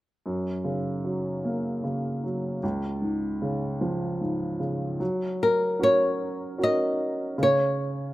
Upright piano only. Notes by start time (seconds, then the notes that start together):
0.26 F#2
0.64 C#3
1.05 F#3
1.45 A#3
1.84 C#3
2.24 F#3
2.63 C#2
3.02 G#2
3.42 C#3
3.81 F3
4.21 G#2
4.60 C#3
5.00 F#3
5.79 C#4 F#4 A#4
6.58 C#4 F#4 A#4
7.38 C#3